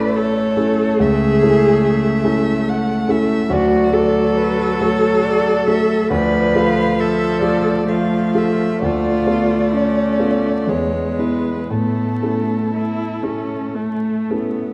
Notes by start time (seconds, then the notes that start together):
Already playing: A1 A3 C#4 E4 A4 B4 D5
0.16 A4 C#5
0.56 C#4 E4 A4
0.99 C#2 G#4 E5
1.42 C#4 E4 A4
1.84 E5
2.23 C#4 E4 A4
2.69 F#5
3.08 C#4 E4 A4 E5
3.50 D2 F#3 F#4 D5
3.93 A3 F#4 A4
4.37 B4
4.80 A3 F#4 A4 C#5
5.24 D5
5.68 A3 F#4 A4 E5
6.10 D2 F3 B4 D5
6.55 A3 F4 A4 F5
6.96 F3 A4 E5
7.42 A3 F4 A4 D5
7.86 F3 A3 F5
8.34 A3 F4 A4 E5
8.82 D2 A3 F4 D5
9.27 B3 F4 A4
9.74 C#4
10.19 B3 F4 A4
10.67 E2 G#3 B3 C#5
11.19 B3 E4 G#4 B4
11.70 A2 A3 B3 A4
12.22 C#4 E4 A4
12.74 A3 E4
13.22 C#4 E4 A4
13.76 A3
14.30 B3 C#4 E4 A4